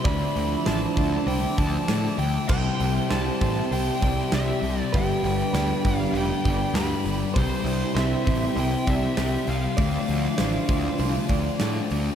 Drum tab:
CC |--------|x-------|--------|--------|
HH |oooooooo|-ooooooo|oooooooo|oooooooo|
SD |--o---o-|--o---o-|--o---o-|--o---o-|
BD |o--o-o--|o--o-o--|o--o-o--|o--o-o--|

CC |--------|
HH |oooooooo|
SD |--o---o-|
BD |o--o-o--|